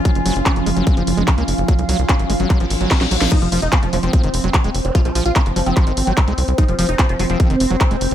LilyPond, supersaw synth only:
\new Staff \with { instrumentName = "Supersaw synth" } { \clef bass \time 4/4 \key f \phrygian \tempo 4 = 147 r1 | r1 | ees'16 f16 f16 ees'16 f16 f16 f16 c'2 r16 | f'16 f16 f16 f'16 f16 f16 f16 c'2 r16 |
ees'16 f16 f16 ees'16 f16 f16 f16 c'2 r16 | }